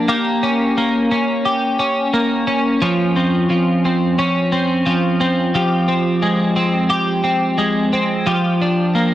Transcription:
Already playing: D4
0.08 A#3 G4
0.43 C#4
0.78 A#3
1.11 C#4
1.45 G4
1.79 C#4
2.14 A#3
2.47 C#4
2.82 F3 C#4
3.16 C4
3.50 F3
3.85 C4
4.19 C#4
4.52 C4
4.86 F3
5.20 C4
5.55 F3 G4
5.88 C4
6.22 G#3
6.56 C4
6.90 G4
7.24 C4
7.58 G#3
7.93 C4
8.27 F3 G4
8.62 D4
8.95 A#3

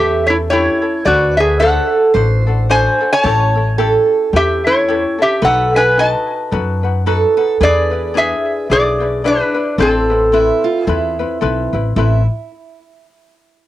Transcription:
Already playing: E2 C#4 E4 G4 A4 E5
0.00 G4 A4
0.27 C#4 E4 A4 C#5
0.50 C#4 E4 G4 A4 C#5
0.82 C#4 E4 A4
1.05 D2 D4 F#4 A4 B4 C5 D5
1.37 D4 F#4 G#4 A4 E5
1.59 D4 F#4 A4 C5 F#5
2.14 A1 D4 F#4 A4 C5
2.47 D4 F#4 A4
2.69 D4 F#4 A4 C5 G#5
3.00 D4 F#4 A4
3.13 C#5 G#5
3.23 A1 C#4 E4 G4 A4 C#5 A5
3.55 C#4 E4 A4
3.78 C#4 E4 G4 A4
4.33 E2 C#4 E4 G4 A4 E5
4.64 C#4 E4 A4 C#5
4.88 C#4 E4 G4 A4
5.18 C#4 E4 A4 E5
5.23 G4
5.42 B1 D#4 F#4 A4 B4 F#5
5.74 D#4 F#4 B4 G#5
5.97 D#4 F#4 A4 B4 D#5 A5
6.51 F#2 D#4 F#4 A4 B4
6.83 D#4 F#4 B4
7.06 D#4 F#4 A4 B4
7.37 D#4 F#4 A4 B4
7.60 E2 D4 E4 G#4 B4 D5
7.91 D4 E4 B4
8.14 D4 E4 G#4 B4
8.18 E5
8.70 B1 D4 E4 G#4 B4 D5
9.01 D4 E4 B4
9.24 D4 E4 G#4 B4
9.54 D4 E4 B4
9.78 A1 C4 E4 A4 B4 C5
10.10 C4 E4 B4
10.32 C4 E4 A4 B4
10.64 F4
10.83 G#4 A4
10.87 E2 C4 E4 B4
11.19 C4 E4 B4
11.41 B1 C4 E4 A4 B4
11.73 A1 C4 E4 B4
11.96 A1 C4 E4 A4 B4

